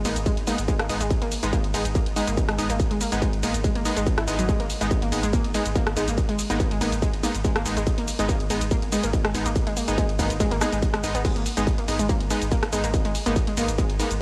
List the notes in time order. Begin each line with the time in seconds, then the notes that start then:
0.05 G#1 G#3 A#3 B3 D#4, open hi-hat, ride, shaker
0.16 G#1, closed hi-hat, ride, shaker
0.26 G#3, kick, closed hi-hat, ride, shaker
0.37 G#1, closed hi-hat, ride
0.47 G#3 A#3 B3 D#4, open hi-hat, ride, shaker
0.58 G#1, closed hi-hat, ride, shaker
0.68 G#3, kick, closed hi-hat, ride, shaker
0.79 G#1 A#3, cross-stick, closed hi-hat, ride
0.89 G#1 G#3 B3 D#4, open hi-hat, ride, shaker
1.01 G#1 G#3, closed hi-hat, ride, shaker
1.11 kick, closed hi-hat, ride, shaker
1.22 G#1 A#3, closed hi-hat, ride
1.32 open hi-hat, ride, shaker
1.43 G#1 G#3 B3 D#4, closed hi-hat, ride, shaker
1.53 A#3, kick, closed hi-hat, ride, shaker
1.64 G#1, closed hi-hat, ride
1.74 G#1 G#3 B3 D#4, open hi-hat, ride, shaker
1.85 G#1, closed hi-hat, ride, shaker
1.95 A#3, kick, closed hi-hat, ride, shaker
2.06 G#1, closed hi-hat, ride
2.16 G#3 B3 D#4, open hi-hat, ride, shaker
2.27 G#1 A#3, closed hi-hat, ride, shaker
2.37 kick, closed hi-hat, ride, shaker
2.49 G#1 G#3, cross-stick, closed hi-hat, ride
2.58 G#1 G#3 B3 D#4, open hi-hat, ride, shaker
2.70 G#1 A#3, closed hi-hat, ride, shaker
2.80 kick, closed hi-hat, ride, shaker
2.91 G#1 G#3, closed hi-hat, ride
3.01 A#3, open hi-hat, ride, shaker
3.12 G#1 G#3 B3 D#4, closed hi-hat, ride, shaker
3.22 G#3, kick, closed hi-hat, ride, shaker
3.33 G#1, closed hi-hat, ride
3.43 G#1 G#3 A#3 B3 D#4, open hi-hat, ride, shaker
3.54 G#1, closed hi-hat, ride, shaker
3.64 G#3, kick, closed hi-hat, ride, shaker
3.75 G#1 A#3, closed hi-hat, ride
3.85 G#3 B3 D#4, open hi-hat, ride, shaker
3.96 G#1 G#3, closed hi-hat, ride, shaker
4.06 kick, closed hi-hat, ride, shaker
4.18 G#1 E4, cross-stick, closed hi-hat, ride
4.28 G#1 G#3 B3 D#4, open hi-hat, ride, shaker
4.39 G#1 F#3, closed hi-hat, ride, shaker
4.49 G#3, kick, closed hi-hat, ride, shaker
4.60 G#1 A#3, closed hi-hat, ride
4.70 open hi-hat, ride, shaker
4.81 G#1 G#3 B3 D#4, closed hi-hat, ride, shaker
4.91 kick, closed hi-hat, ride, shaker
5.02 G#1 A#3, closed hi-hat, ride
5.12 G#1 G#3 B3 D#4, open hi-hat, ride, shaker
5.23 G#1 G#3, closed hi-hat, ride, shaker
5.33 A#3, kick, closed hi-hat, ride, shaker
5.44 G#1, closed hi-hat, ride
5.54 G#3 B3 D#4, open hi-hat, ride, shaker
5.65 G#1, closed hi-hat, ride, shaker
5.75 A#3, kick, closed hi-hat, ride, shaker
5.87 G#1, cross-stick, closed hi-hat, ride
5.97 G#1 G#3 B3 D#4, open hi-hat, ride, shaker
6.08 G#1 A#3, closed hi-hat, ride, shaker
6.18 kick, closed hi-hat, ride, shaker
6.29 G#1 G#3, closed hi-hat, ride
6.39 open hi-hat, ride, shaker
6.50 G#1 G#3 A#3 B3 D#4, closed hi-hat, ride, shaker
6.60 kick, closed hi-hat, ride, shaker
6.71 G#1 G#3, closed hi-hat, ride
6.81 G#1 G#3 A#3 B3 D#4, open hi-hat, ride, shaker
6.92 G#1, closed hi-hat, ride, shaker
7.02 G#3, kick, closed hi-hat, ride, shaker
7.13 G#1, closed hi-hat, ride
7.23 G#3 A#3 B3 D#4, open hi-hat, ride, shaker
7.34 G#1, closed hi-hat, ride, shaker
7.44 G#3, kick, closed hi-hat, ride, shaker
7.56 G#1 A#3, cross-stick, closed hi-hat, ride
7.66 G#1 G#3 B3 D#4, open hi-hat, ride, shaker
7.77 G#1 G#3, closed hi-hat, ride, shaker
7.87 kick, closed hi-hat, ride, shaker
7.98 G#1 A#3, closed hi-hat, ride
8.08 open hi-hat, ride, shaker
8.19 G#1 G#3 B3 D#4, closed hi-hat, ride, shaker
8.29 A#3, kick, closed hi-hat, ride, shaker
8.40 G#1, closed hi-hat, ride
8.50 G#1 G#3 B3 D#4, open hi-hat, ride, shaker
8.61 G#1, closed hi-hat, ride, shaker
8.71 A#3, kick, closed hi-hat, ride, shaker
8.82 G#1, closed hi-hat, ride
8.92 G#3 B3 D#4, open hi-hat, ride, shaker
9.03 G#1 A#3, closed hi-hat, ride, shaker
9.13 kick, closed hi-hat, ride, shaker
9.25 G#1 G#3, cross-stick, closed hi-hat, ride
9.35 G#1 G#3 B3 D#4, open hi-hat, ride, shaker
9.46 G#1 A#3, closed hi-hat, ride, shaker
9.56 kick, closed hi-hat, ride, shaker
9.67 G#1 G#3, closed hi-hat, ride
9.77 A#3, open hi-hat, ride, shaker
9.88 G#1 G#3 B3 D#4, closed hi-hat, ride, shaker
9.98 G#3, kick, closed hi-hat, ride, shaker
10.09 G#1, closed hi-hat, ride
10.19 G#1 G#3 A#3 B3 D#4, kick, open hi-hat, ride, shaker
10.30 G#1, closed hi-hat, ride, shaker
10.40 G#3, kick, closed hi-hat, ride, shaker
10.51 G#1 A#3, closed hi-hat, ride
10.61 G#3 B3 D#4 G#4, cross-stick, open hi-hat, ride, shaker
10.72 G#1 G#3, closed hi-hat, ride, shaker
10.82 kick, closed hi-hat, ride, shaker
10.94 G#1 G#3, cross-stick, closed hi-hat, ride
11.04 G#1 G#3 B3 D#4, open hi-hat, ride, shaker
11.15 G#1 B3, closed hi-hat, ride, shaker
11.25 G#3, kick, closed hi-hat, crash, ride, shaker
11.36 G#1 A#3, closed hi-hat, ride
11.46 open hi-hat, ride, shaker
11.57 G#1 G#3 B3 D#4, closed hi-hat, ride, shaker
11.67 kick, closed hi-hat, ride, shaker
11.78 G#1 A#3, closed hi-hat, ride
11.88 G#1 G#3 B3 D#4, open hi-hat, ride, shaker
11.99 G#1 G#3, closed hi-hat, ride, shaker
12.09 A#3, kick, closed hi-hat, ride, shaker
12.20 G#1, closed hi-hat, ride
12.30 G#3 B3 D#4, open hi-hat, ride, shaker
12.42 G#1, closed hi-hat, ride, shaker
12.52 A#3, kick, closed hi-hat, ride, shaker
12.63 G#1, cross-stick, closed hi-hat, ride
12.73 G#1 G#3 B3 D#4, open hi-hat, ride, shaker
12.84 G#1 A#3, closed hi-hat, ride, shaker
12.94 kick, closed hi-hat, ride, shaker
13.05 G#1 G#3, closed hi-hat, ride
13.15 open hi-hat, ride, shaker
13.26 G#1 G#3 A#3 B3 D#4, closed hi-hat, ride, shaker
13.36 kick, closed hi-hat, ride, shaker
13.47 G#1 G#3, closed hi-hat, ride
13.57 G#1 G#3 A#3 B3 D#4, open hi-hat, ride, shaker
13.68 G#1, closed hi-hat, ride, shaker
13.78 G#3, kick, closed hi-hat, ride, shaker
13.89 G#1, closed hi-hat, ride
13.99 G#3 A#3 B3 D#4, open hi-hat, ride, shaker
14.11 G#1, closed hi-hat, ride, shaker